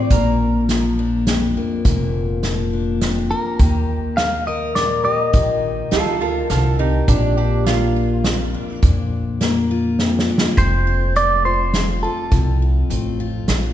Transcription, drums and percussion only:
0.10 kick loud
0.10 closed hi-hat medium
0.69 snare medium
0.69 closed hi-hat medium
1.27 snare medium
1.27 closed hi-hat medium
1.85 kick loud
1.85 closed hi-hat medium
2.43 snare medium
2.43 closed hi-hat medium
3.01 snare medium
3.01 closed hi-hat medium
3.59 kick loud
3.59 closed hi-hat medium
4.18 snare medium
4.18 closed hi-hat medium
4.76 snare medium
4.76 closed hi-hat medium
5.33 kick loud
5.33 closed hi-hat medium
5.92 snare medium
5.92 closed hi-hat medium
6.50 snare medium
6.50 closed hi-hat medium
7.08 kick loud
7.08 closed hi-hat medium
7.66 snare medium
7.66 closed hi-hat medium
8.24 snare medium
8.24 closed hi-hat medium
8.83 kick loud
8.83 closed hi-hat medium
9.41 snare medium
9.41 closed hi-hat medium
9.99 snare medium
10.19 snare medium
10.38 snare loud
10.57 kick loud
10.57 closed hi-hat medium
11.16 closed hi-hat medium
11.74 snare medium
11.74 closed hi-hat medium
12.31 kick loud
12.31 closed hi-hat medium
12.90 closed hi-hat medium
13.48 snare medium
13.48 closed hi-hat medium

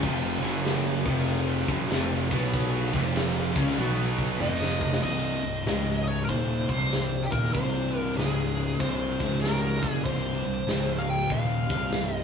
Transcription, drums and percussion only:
0.02 kick loud
0.02 crash loud
0.24 snare soft
0.42 ride medium
0.65 snare loud
0.65 ride loud
1.05 kick loud
1.05 ride medium
1.18 snare soft
1.28 ride loud
1.68 kick loud
1.68 ride medium
1.90 snare loud
1.90 ride loud
2.31 kick loud
2.31 ride medium
2.54 kick loud
2.54 ride loud
2.93 kick loud
2.93 ride medium
3.16 snare loud
3.16 ride loud
3.55 kick loud
3.55 ride medium
3.68 snare soft
3.78 high tom medium
4.18 kick medium
4.40 mid tom medium
4.62 snare medium
4.81 kick loud
4.93 snare medium
5.03 kick medium
5.03 crash loud
5.66 snare loud
5.66 open hi-hat medium
6.28 kick loud
6.28 open hi-hat medium
6.69 kick loud
6.92 snare loud
6.92 open hi-hat medium
7.32 kick loud
7.45 snare soft
7.55 kick loud
7.55 open hi-hat medium
8.18 snare loud
8.18 open hi-hat medium
8.80 kick loud
8.80 open hi-hat medium
9.20 kick loud
9.42 snare loud
9.42 open hi-hat medium
9.83 kick loud
10.05 kick loud
10.05 open hi-hat medium
10.67 snare loud
10.67 open hi-hat medium
11.30 kick loud
11.30 open hi-hat medium
11.70 kick loud
11.91 snare loud
11.91 open hi-hat medium

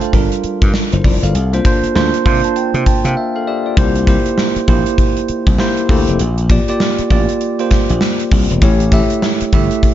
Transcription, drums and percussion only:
0.01 closed hi-hat medium
0.13 kick medium
0.13 closed hi-hat medium
0.32 closed hi-hat medium
0.44 closed hi-hat medium
0.62 kick loud
0.62 closed hi-hat medium
0.74 snare loud
0.92 closed hi-hat medium
1.04 kick medium
1.04 open hi-hat medium
1.23 closed hi-hat medium
1.35 closed hi-hat medium
1.53 closed hi-hat medium
1.65 kick medium
1.65 closed hi-hat medium
1.84 closed hi-hat medium
1.96 snare loud
2.14 closed hi-hat medium
2.26 kick medium
2.26 open hi-hat medium
2.44 closed hi-hat medium
2.56 closed hi-hat medium
2.74 closed hi-hat medium
2.86 kick medium
2.86 closed hi-hat medium
3.05 closed hi-hat medium
3.77 kick loud
3.77 closed hi-hat medium
3.95 closed hi-hat medium
4.07 kick loud
4.07 closed hi-hat medium
4.26 closed hi-hat medium
4.38 snare loud
4.56 closed hi-hat medium
4.68 kick medium
4.68 closed hi-hat medium
4.86 closed hi-hat medium
4.98 kick medium
4.98 closed hi-hat medium
5.17 closed hi-hat soft
5.28 closed hi-hat medium
5.47 kick loud
5.47 closed hi-hat medium
5.58 snare loud
5.77 closed hi-hat soft
5.89 kick loud
5.89 open hi-hat medium
6.08 closed hi-hat medium
6.19 closed hi-hat loud
6.38 closed hi-hat medium
6.50 kick loud
6.50 closed hi-hat medium
6.68 closed hi-hat medium
6.80 snare medium
6.98 closed hi-hat medium
7.10 kick medium
7.10 closed hi-hat medium
7.29 closed hi-hat medium
7.41 closed hi-hat medium
7.59 closed hi-hat medium
7.71 kick medium
7.71 snare medium
7.71 closed hi-hat medium
7.89 closed hi-hat medium
8.01 snare loud
8.19 closed hi-hat medium
8.31 kick loud
8.31 open hi-hat medium
8.50 closed hi-hat soft
8.62 kick loud
8.62 closed hi-hat medium
8.80 closed hi-hat medium
8.92 kick loud
8.92 closed hi-hat medium
9.10 closed hi-hat medium
9.22 snare medium
9.41 closed hi-hat medium
9.53 kick medium
9.53 closed hi-hat medium
9.71 closed hi-hat medium
9.83 kick medium
9.83 closed hi-hat medium

